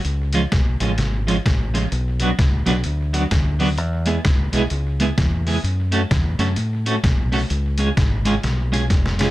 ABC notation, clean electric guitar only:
X:1
M:4/4
L:1/16
Q:"Swing" 1/4=129
K:C#phr
V:1 name="Clean electric guitar"
z2 [^E,G,C^E] z3 [E,G,CE] z3 [E,G,CE] z3 [E,G,CE] z | z2 [F,B,DF] z3 [F,B,DF] z3 [F,B,DF] z3 [F,B,DF] z | z2 [G,B,EG] z3 [G,B,EG] z3 [G,B,EG] z3 [G,B,EG] z | z2 [A,CFA] z3 [A,CFA] z3 [A,CFA] z3 [A,CFA] z |
z2 [G,C^EG] z3 [G,CEG] z3 [G,CEG] z3 [G,CEG] z |]